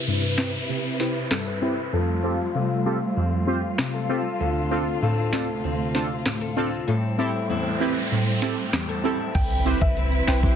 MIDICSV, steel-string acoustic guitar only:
0, 0, Header, 1, 2, 480
1, 0, Start_track
1, 0, Tempo, 618557
1, 1496, Time_signature, 4, 2, 24, 8
1, 8192, End_track
2, 0, Start_track
2, 0, Title_t, "Steel-string acoustic guitar"
2, 0, Program_c, 0, 25
2, 0, Note_on_c, 0, 48, 79
2, 56, Note_on_c, 0, 60, 57
2, 61, Note_on_c, 0, 64, 58
2, 65, Note_on_c, 0, 71, 62
2, 532, Note_off_c, 0, 60, 0
2, 536, Note_on_c, 0, 60, 60
2, 1013, Note_off_c, 0, 71, 0
2, 1016, Note_on_c, 0, 69, 63
2, 1136, Note_off_c, 0, 69, 0
2, 1136, Note_on_c, 0, 71, 55
2, 1252, Note_off_c, 0, 64, 0
2, 1253, Note_off_c, 0, 60, 0
2, 1256, Note_off_c, 0, 71, 0
2, 1256, Note_on_c, 0, 60, 57
2, 1261, Note_on_c, 0, 64, 58
2, 1266, Note_on_c, 0, 71, 63
2, 1496, Note_off_c, 0, 48, 0
2, 1496, Note_on_c, 0, 53, 79
2, 1498, Note_off_c, 0, 71, 0
2, 1501, Note_on_c, 0, 69, 68
2, 1547, Note_off_c, 0, 64, 0
2, 1736, Note_on_c, 0, 65, 60
2, 1973, Note_off_c, 0, 60, 0
2, 1976, Note_on_c, 0, 60, 60
2, 1978, Note_off_c, 0, 65, 0
2, 1981, Note_on_c, 0, 65, 62
2, 1982, Note_off_c, 0, 69, 0
2, 1985, Note_on_c, 0, 69, 64
2, 2453, Note_off_c, 0, 60, 0
2, 2456, Note_on_c, 0, 60, 60
2, 2932, Note_off_c, 0, 69, 0
2, 2935, Note_on_c, 0, 67, 66
2, 3056, Note_off_c, 0, 67, 0
2, 3056, Note_on_c, 0, 69, 55
2, 3173, Note_off_c, 0, 60, 0
2, 3176, Note_off_c, 0, 69, 0
2, 3176, Note_on_c, 0, 60, 56
2, 3177, Note_off_c, 0, 65, 0
2, 3180, Note_on_c, 0, 65, 60
2, 3185, Note_on_c, 0, 69, 65
2, 3411, Note_off_c, 0, 53, 0
2, 3414, Note_on_c, 0, 50, 78
2, 3416, Note_off_c, 0, 69, 0
2, 3419, Note_on_c, 0, 69, 66
2, 3652, Note_off_c, 0, 65, 0
2, 3656, Note_on_c, 0, 65, 58
2, 3891, Note_off_c, 0, 65, 0
2, 3893, Note_off_c, 0, 60, 0
2, 3896, Note_on_c, 0, 60, 59
2, 3901, Note_on_c, 0, 65, 59
2, 3902, Note_off_c, 0, 69, 0
2, 3905, Note_on_c, 0, 69, 64
2, 4372, Note_off_c, 0, 60, 0
2, 4375, Note_on_c, 0, 60, 64
2, 4853, Note_off_c, 0, 69, 0
2, 4856, Note_on_c, 0, 67, 67
2, 4976, Note_off_c, 0, 67, 0
2, 4976, Note_on_c, 0, 69, 55
2, 5091, Note_off_c, 0, 65, 0
2, 5092, Note_off_c, 0, 60, 0
2, 5095, Note_on_c, 0, 60, 61
2, 5096, Note_off_c, 0, 69, 0
2, 5100, Note_on_c, 0, 65, 58
2, 5105, Note_on_c, 0, 69, 61
2, 5335, Note_off_c, 0, 50, 0
2, 5336, Note_on_c, 0, 45, 79
2, 5337, Note_off_c, 0, 69, 0
2, 5340, Note_on_c, 0, 69, 70
2, 5386, Note_off_c, 0, 65, 0
2, 5576, Note_on_c, 0, 64, 59
2, 5812, Note_off_c, 0, 60, 0
2, 5815, Note_on_c, 0, 60, 60
2, 5816, Note_off_c, 0, 69, 0
2, 5817, Note_off_c, 0, 64, 0
2, 5820, Note_on_c, 0, 64, 60
2, 5825, Note_on_c, 0, 69, 66
2, 6293, Note_off_c, 0, 60, 0
2, 6296, Note_on_c, 0, 60, 62
2, 6772, Note_off_c, 0, 69, 0
2, 6775, Note_on_c, 0, 67, 66
2, 6896, Note_off_c, 0, 67, 0
2, 6896, Note_on_c, 0, 69, 56
2, 7012, Note_off_c, 0, 60, 0
2, 7016, Note_off_c, 0, 69, 0
2, 7016, Note_on_c, 0, 60, 59
2, 7017, Note_off_c, 0, 64, 0
2, 7020, Note_on_c, 0, 64, 59
2, 7025, Note_on_c, 0, 69, 63
2, 7256, Note_off_c, 0, 45, 0
2, 7309, Note_off_c, 0, 69, 0
2, 7493, Note_off_c, 0, 60, 0
2, 7496, Note_on_c, 0, 60, 64
2, 7497, Note_off_c, 0, 64, 0
2, 7500, Note_on_c, 0, 64, 62
2, 7505, Note_on_c, 0, 71, 71
2, 7733, Note_off_c, 0, 60, 0
2, 7736, Note_on_c, 0, 60, 63
2, 7965, Note_off_c, 0, 64, 0
2, 7974, Note_on_c, 0, 64, 64
2, 8192, Note_off_c, 0, 60, 0
2, 8192, Note_off_c, 0, 64, 0
2, 8192, Note_off_c, 0, 71, 0
2, 8192, End_track
0, 0, End_of_file